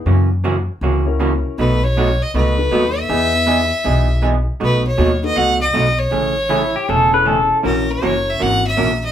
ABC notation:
X:1
M:4/4
L:1/16
Q:"Swing" 1/4=158
K:Bmix
V:1 name="Fiddle"
z16 | B2 c4 d2 B6 e2- | e12 z4 | B2 c4 d2 f2 d4 c2- |
c8- c2 z6 | ^A2 c4 e2 f2 e4 d2 |]
V:2 name="Pedal steel guitar"
z16 | z16 | z16 | z16 |
z4 E2 =G2 A2 B2 A3 z | z16 |]
V:3 name="Upright piano"
z8 z2 [CEF^A]6 | z8 z2 [B,DFA]6 | [B,EG]6 z8 z2 | z6 [B,DFA]2 z8 |
z8 z2 [CEGA]6 | [CEF^A]8- [CEFA]2 z6 |]
V:4 name="Hollow-body jazz guitar"
[C,E,^A,CF]2 z2 [C,E,A,CF] z3 [C,E,A,CF]2 z2 [C,E,A,CF] z3 | [B,,F,A,DF]2 z2 [B,,F,A,DF] z3 [B,,F,A,DF]2 z2 [B,,F,A,DF] z3 | [E,B,DG]2 z2 [E,B,DG] z3 [E,B,DG]2 z2 [E,B,DG] z3 | [B,,F,A,DF]2 z2 [B,,F,A,DF] z3 [B,,F,A,DF]2 z2 [B,,F,A,DF] z3 |
[C,E,A,CG]2 z2 [C,E,A,CG] z3 [C,E,A,CG]2 z2 [C,E,A,CG] z3 | [E,^A,CF^A]2 z2 [E,A,CFA] z3 [E,A,CFA]2 z2 [E,A,CFA] z3 |]
V:5 name="Upright bass" clef=bass
F,,8 C,,8 | B,,,8 C,,4 D,,4 | E,,8 B,,,8 | B,,,4 D,,4 C,,4 B,,,4 |
A,,,8 E,,,8 | ^A,,,4 F,,,4 G,,,4 A,,,4 |]